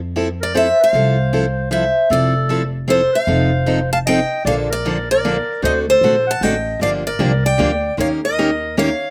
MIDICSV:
0, 0, Header, 1, 5, 480
1, 0, Start_track
1, 0, Key_signature, -1, "major"
1, 0, Tempo, 391389
1, 1148, Time_signature, 3, 2, 24, 8
1, 11164, End_track
2, 0, Start_track
2, 0, Title_t, "Steel-string acoustic guitar"
2, 0, Program_c, 0, 25
2, 528, Note_on_c, 0, 74, 89
2, 689, Note_off_c, 0, 74, 0
2, 701, Note_on_c, 0, 76, 92
2, 1001, Note_off_c, 0, 76, 0
2, 1025, Note_on_c, 0, 77, 90
2, 2115, Note_on_c, 0, 76, 81
2, 2392, Note_off_c, 0, 77, 0
2, 2604, Note_off_c, 0, 76, 0
2, 2609, Note_on_c, 0, 74, 92
2, 3337, Note_off_c, 0, 74, 0
2, 3559, Note_on_c, 0, 72, 90
2, 3867, Note_on_c, 0, 77, 96
2, 3870, Note_off_c, 0, 72, 0
2, 4772, Note_off_c, 0, 77, 0
2, 4816, Note_on_c, 0, 81, 102
2, 4877, Note_off_c, 0, 81, 0
2, 4990, Note_on_c, 0, 79, 100
2, 5435, Note_off_c, 0, 79, 0
2, 5483, Note_on_c, 0, 77, 98
2, 5564, Note_off_c, 0, 77, 0
2, 5795, Note_on_c, 0, 74, 102
2, 6231, Note_off_c, 0, 74, 0
2, 6268, Note_on_c, 0, 74, 99
2, 6927, Note_off_c, 0, 74, 0
2, 6932, Note_on_c, 0, 75, 96
2, 7012, Note_off_c, 0, 75, 0
2, 7233, Note_on_c, 0, 72, 93
2, 7717, Note_off_c, 0, 72, 0
2, 7735, Note_on_c, 0, 81, 97
2, 7884, Note_off_c, 0, 81, 0
2, 7884, Note_on_c, 0, 79, 92
2, 8368, Note_off_c, 0, 79, 0
2, 8373, Note_on_c, 0, 77, 96
2, 8452, Note_off_c, 0, 77, 0
2, 8669, Note_on_c, 0, 74, 86
2, 9148, Note_on_c, 0, 79, 94
2, 9154, Note_off_c, 0, 74, 0
2, 9748, Note_off_c, 0, 79, 0
2, 9817, Note_on_c, 0, 77, 89
2, 9895, Note_off_c, 0, 77, 0
2, 10117, Note_on_c, 0, 75, 95
2, 10776, Note_off_c, 0, 75, 0
2, 10781, Note_on_c, 0, 77, 89
2, 11164, Note_off_c, 0, 77, 0
2, 11164, End_track
3, 0, Start_track
3, 0, Title_t, "Clarinet"
3, 0, Program_c, 1, 71
3, 496, Note_on_c, 1, 70, 68
3, 656, Note_off_c, 1, 70, 0
3, 663, Note_on_c, 1, 72, 80
3, 951, Note_off_c, 1, 72, 0
3, 981, Note_on_c, 1, 72, 81
3, 2063, Note_off_c, 1, 72, 0
3, 2096, Note_on_c, 1, 72, 73
3, 2548, Note_off_c, 1, 72, 0
3, 2582, Note_on_c, 1, 69, 86
3, 3323, Note_off_c, 1, 69, 0
3, 3544, Note_on_c, 1, 69, 81
3, 3826, Note_off_c, 1, 69, 0
3, 3833, Note_on_c, 1, 72, 79
3, 4755, Note_off_c, 1, 72, 0
3, 4812, Note_on_c, 1, 77, 85
3, 4891, Note_off_c, 1, 77, 0
3, 4981, Note_on_c, 1, 75, 92
3, 5430, Note_off_c, 1, 75, 0
3, 5459, Note_on_c, 1, 74, 86
3, 5599, Note_off_c, 1, 74, 0
3, 5764, Note_on_c, 1, 70, 75
3, 6215, Note_off_c, 1, 70, 0
3, 6265, Note_on_c, 1, 70, 86
3, 6866, Note_off_c, 1, 70, 0
3, 6914, Note_on_c, 1, 72, 86
3, 7110, Note_off_c, 1, 72, 0
3, 7222, Note_on_c, 1, 69, 66
3, 7681, Note_off_c, 1, 69, 0
3, 7689, Note_on_c, 1, 78, 74
3, 7893, Note_on_c, 1, 75, 81
3, 7912, Note_off_c, 1, 78, 0
3, 8354, Note_off_c, 1, 75, 0
3, 8361, Note_on_c, 1, 74, 89
3, 8496, Note_off_c, 1, 74, 0
3, 8669, Note_on_c, 1, 70, 65
3, 9108, Note_off_c, 1, 70, 0
3, 9140, Note_on_c, 1, 74, 85
3, 9743, Note_off_c, 1, 74, 0
3, 9809, Note_on_c, 1, 73, 84
3, 9942, Note_off_c, 1, 73, 0
3, 10105, Note_on_c, 1, 70, 69
3, 10706, Note_off_c, 1, 70, 0
3, 10758, Note_on_c, 1, 73, 85
3, 11164, Note_off_c, 1, 73, 0
3, 11164, End_track
4, 0, Start_track
4, 0, Title_t, "Steel-string acoustic guitar"
4, 0, Program_c, 2, 25
4, 194, Note_on_c, 2, 53, 76
4, 195, Note_on_c, 2, 60, 74
4, 199, Note_on_c, 2, 64, 85
4, 208, Note_on_c, 2, 69, 87
4, 331, Note_off_c, 2, 53, 0
4, 332, Note_off_c, 2, 60, 0
4, 334, Note_off_c, 2, 64, 0
4, 338, Note_off_c, 2, 69, 0
4, 667, Note_on_c, 2, 60, 83
4, 670, Note_on_c, 2, 53, 82
4, 677, Note_on_c, 2, 64, 99
4, 681, Note_on_c, 2, 69, 97
4, 808, Note_off_c, 2, 60, 0
4, 810, Note_off_c, 2, 53, 0
4, 814, Note_off_c, 2, 64, 0
4, 815, Note_off_c, 2, 69, 0
4, 1149, Note_on_c, 2, 60, 62
4, 1151, Note_on_c, 2, 53, 62
4, 1161, Note_on_c, 2, 64, 64
4, 1168, Note_on_c, 2, 69, 65
4, 1415, Note_off_c, 2, 60, 0
4, 1416, Note_off_c, 2, 53, 0
4, 1421, Note_off_c, 2, 64, 0
4, 1425, Note_off_c, 2, 69, 0
4, 1629, Note_on_c, 2, 53, 76
4, 1630, Note_on_c, 2, 64, 90
4, 1634, Note_on_c, 2, 60, 81
4, 1643, Note_on_c, 2, 69, 82
4, 1770, Note_off_c, 2, 53, 0
4, 1770, Note_off_c, 2, 64, 0
4, 1773, Note_off_c, 2, 60, 0
4, 1777, Note_off_c, 2, 69, 0
4, 2095, Note_on_c, 2, 53, 80
4, 2096, Note_on_c, 2, 60, 90
4, 2103, Note_on_c, 2, 64, 85
4, 2109, Note_on_c, 2, 69, 85
4, 2243, Note_off_c, 2, 53, 0
4, 2243, Note_off_c, 2, 60, 0
4, 2247, Note_off_c, 2, 64, 0
4, 2250, Note_off_c, 2, 69, 0
4, 2574, Note_on_c, 2, 53, 66
4, 2590, Note_on_c, 2, 60, 63
4, 2591, Note_on_c, 2, 64, 67
4, 2593, Note_on_c, 2, 69, 68
4, 2848, Note_off_c, 2, 53, 0
4, 2856, Note_off_c, 2, 60, 0
4, 2856, Note_off_c, 2, 64, 0
4, 2857, Note_off_c, 2, 69, 0
4, 3056, Note_on_c, 2, 53, 91
4, 3064, Note_on_c, 2, 60, 86
4, 3067, Note_on_c, 2, 64, 94
4, 3069, Note_on_c, 2, 69, 92
4, 3204, Note_off_c, 2, 53, 0
4, 3208, Note_off_c, 2, 60, 0
4, 3209, Note_off_c, 2, 64, 0
4, 3210, Note_off_c, 2, 69, 0
4, 3527, Note_on_c, 2, 53, 88
4, 3528, Note_on_c, 2, 60, 88
4, 3536, Note_on_c, 2, 64, 91
4, 3546, Note_on_c, 2, 69, 96
4, 3679, Note_off_c, 2, 53, 0
4, 3679, Note_off_c, 2, 60, 0
4, 3684, Note_off_c, 2, 64, 0
4, 3688, Note_off_c, 2, 69, 0
4, 4011, Note_on_c, 2, 53, 63
4, 4022, Note_on_c, 2, 60, 62
4, 4023, Note_on_c, 2, 63, 73
4, 4027, Note_on_c, 2, 69, 70
4, 4286, Note_off_c, 2, 53, 0
4, 4291, Note_off_c, 2, 60, 0
4, 4292, Note_off_c, 2, 63, 0
4, 4294, Note_off_c, 2, 69, 0
4, 4493, Note_on_c, 2, 53, 86
4, 4498, Note_on_c, 2, 60, 85
4, 4500, Note_on_c, 2, 63, 90
4, 4502, Note_on_c, 2, 69, 88
4, 4641, Note_off_c, 2, 53, 0
4, 4644, Note_off_c, 2, 60, 0
4, 4645, Note_off_c, 2, 63, 0
4, 4646, Note_off_c, 2, 69, 0
4, 4994, Note_on_c, 2, 53, 87
4, 5002, Note_on_c, 2, 63, 97
4, 5005, Note_on_c, 2, 60, 98
4, 5009, Note_on_c, 2, 69, 98
4, 5132, Note_off_c, 2, 53, 0
4, 5136, Note_off_c, 2, 63, 0
4, 5137, Note_off_c, 2, 60, 0
4, 5139, Note_off_c, 2, 69, 0
4, 5472, Note_on_c, 2, 50, 72
4, 5477, Note_on_c, 2, 58, 71
4, 5481, Note_on_c, 2, 53, 66
4, 5482, Note_on_c, 2, 62, 74
4, 5484, Note_on_c, 2, 69, 71
4, 5736, Note_off_c, 2, 50, 0
4, 5739, Note_off_c, 2, 58, 0
4, 5740, Note_off_c, 2, 53, 0
4, 5741, Note_off_c, 2, 62, 0
4, 5742, Note_off_c, 2, 69, 0
4, 5949, Note_on_c, 2, 50, 88
4, 5955, Note_on_c, 2, 53, 88
4, 5956, Note_on_c, 2, 58, 95
4, 5957, Note_on_c, 2, 62, 96
4, 5959, Note_on_c, 2, 69, 96
4, 6089, Note_off_c, 2, 50, 0
4, 6092, Note_off_c, 2, 53, 0
4, 6092, Note_off_c, 2, 58, 0
4, 6093, Note_off_c, 2, 62, 0
4, 6094, Note_off_c, 2, 69, 0
4, 6432, Note_on_c, 2, 50, 84
4, 6435, Note_on_c, 2, 58, 93
4, 6436, Note_on_c, 2, 53, 86
4, 6437, Note_on_c, 2, 62, 98
4, 6442, Note_on_c, 2, 69, 102
4, 6570, Note_off_c, 2, 50, 0
4, 6572, Note_off_c, 2, 53, 0
4, 6572, Note_off_c, 2, 58, 0
4, 6573, Note_off_c, 2, 62, 0
4, 6575, Note_off_c, 2, 69, 0
4, 6897, Note_on_c, 2, 50, 63
4, 6897, Note_on_c, 2, 57, 64
4, 6905, Note_on_c, 2, 66, 68
4, 6909, Note_on_c, 2, 60, 64
4, 6916, Note_on_c, 2, 69, 67
4, 7167, Note_off_c, 2, 50, 0
4, 7167, Note_off_c, 2, 57, 0
4, 7172, Note_off_c, 2, 66, 0
4, 7174, Note_off_c, 2, 60, 0
4, 7177, Note_off_c, 2, 69, 0
4, 7398, Note_on_c, 2, 50, 76
4, 7403, Note_on_c, 2, 57, 82
4, 7403, Note_on_c, 2, 60, 80
4, 7407, Note_on_c, 2, 66, 84
4, 7407, Note_on_c, 2, 69, 91
4, 7533, Note_off_c, 2, 50, 0
4, 7535, Note_off_c, 2, 60, 0
4, 7536, Note_off_c, 2, 57, 0
4, 7537, Note_off_c, 2, 66, 0
4, 7537, Note_off_c, 2, 69, 0
4, 7878, Note_on_c, 2, 50, 93
4, 7880, Note_on_c, 2, 57, 94
4, 7887, Note_on_c, 2, 60, 91
4, 7899, Note_on_c, 2, 66, 94
4, 7899, Note_on_c, 2, 69, 104
4, 8012, Note_off_c, 2, 50, 0
4, 8014, Note_off_c, 2, 57, 0
4, 8017, Note_off_c, 2, 60, 0
4, 8023, Note_off_c, 2, 66, 0
4, 8023, Note_off_c, 2, 69, 0
4, 8351, Note_on_c, 2, 50, 63
4, 8355, Note_on_c, 2, 58, 67
4, 8358, Note_on_c, 2, 53, 67
4, 8359, Note_on_c, 2, 62, 67
4, 8361, Note_on_c, 2, 67, 74
4, 8614, Note_off_c, 2, 50, 0
4, 8616, Note_off_c, 2, 58, 0
4, 8618, Note_off_c, 2, 53, 0
4, 8618, Note_off_c, 2, 62, 0
4, 8619, Note_off_c, 2, 67, 0
4, 8818, Note_on_c, 2, 50, 77
4, 8820, Note_on_c, 2, 53, 96
4, 8829, Note_on_c, 2, 58, 88
4, 8829, Note_on_c, 2, 62, 85
4, 8837, Note_on_c, 2, 67, 90
4, 8962, Note_off_c, 2, 50, 0
4, 8963, Note_off_c, 2, 53, 0
4, 8968, Note_off_c, 2, 58, 0
4, 8968, Note_off_c, 2, 62, 0
4, 8972, Note_off_c, 2, 67, 0
4, 9294, Note_on_c, 2, 50, 91
4, 9303, Note_on_c, 2, 53, 92
4, 9306, Note_on_c, 2, 62, 87
4, 9308, Note_on_c, 2, 58, 97
4, 9315, Note_on_c, 2, 67, 94
4, 9440, Note_off_c, 2, 50, 0
4, 9445, Note_off_c, 2, 53, 0
4, 9446, Note_off_c, 2, 62, 0
4, 9447, Note_off_c, 2, 58, 0
4, 9451, Note_off_c, 2, 67, 0
4, 9778, Note_on_c, 2, 51, 67
4, 9783, Note_on_c, 2, 58, 68
4, 9792, Note_on_c, 2, 61, 64
4, 9797, Note_on_c, 2, 70, 73
4, 9799, Note_on_c, 2, 67, 76
4, 10047, Note_off_c, 2, 51, 0
4, 10050, Note_off_c, 2, 58, 0
4, 10054, Note_off_c, 2, 61, 0
4, 10057, Note_off_c, 2, 70, 0
4, 10058, Note_off_c, 2, 67, 0
4, 10283, Note_on_c, 2, 51, 89
4, 10284, Note_on_c, 2, 58, 85
4, 10287, Note_on_c, 2, 61, 85
4, 10290, Note_on_c, 2, 67, 98
4, 10291, Note_on_c, 2, 70, 98
4, 10414, Note_off_c, 2, 51, 0
4, 10415, Note_off_c, 2, 58, 0
4, 10416, Note_off_c, 2, 61, 0
4, 10418, Note_off_c, 2, 67, 0
4, 10418, Note_off_c, 2, 70, 0
4, 10759, Note_on_c, 2, 51, 88
4, 10762, Note_on_c, 2, 58, 88
4, 10763, Note_on_c, 2, 61, 92
4, 10763, Note_on_c, 2, 67, 102
4, 10776, Note_on_c, 2, 70, 92
4, 10892, Note_off_c, 2, 51, 0
4, 10894, Note_off_c, 2, 58, 0
4, 10894, Note_off_c, 2, 67, 0
4, 10895, Note_off_c, 2, 61, 0
4, 10901, Note_off_c, 2, 70, 0
4, 11164, End_track
5, 0, Start_track
5, 0, Title_t, "Upright bass"
5, 0, Program_c, 3, 32
5, 0, Note_on_c, 3, 41, 81
5, 860, Note_off_c, 3, 41, 0
5, 1140, Note_on_c, 3, 36, 74
5, 2296, Note_off_c, 3, 36, 0
5, 2580, Note_on_c, 3, 29, 81
5, 3736, Note_off_c, 3, 29, 0
5, 4012, Note_on_c, 3, 29, 87
5, 5170, Note_off_c, 3, 29, 0
5, 5455, Note_on_c, 3, 34, 85
5, 6611, Note_off_c, 3, 34, 0
5, 6901, Note_on_c, 3, 38, 89
5, 7287, Note_off_c, 3, 38, 0
5, 7374, Note_on_c, 3, 34, 76
5, 7787, Note_off_c, 3, 34, 0
5, 7863, Note_on_c, 3, 33, 84
5, 8272, Note_off_c, 3, 33, 0
5, 8335, Note_on_c, 3, 31, 81
5, 8723, Note_off_c, 3, 31, 0
5, 8818, Note_on_c, 3, 36, 83
5, 9229, Note_off_c, 3, 36, 0
5, 9315, Note_on_c, 3, 38, 85
5, 9719, Note_off_c, 3, 38, 0
5, 9786, Note_on_c, 3, 39, 88
5, 10937, Note_off_c, 3, 39, 0
5, 11164, End_track
0, 0, End_of_file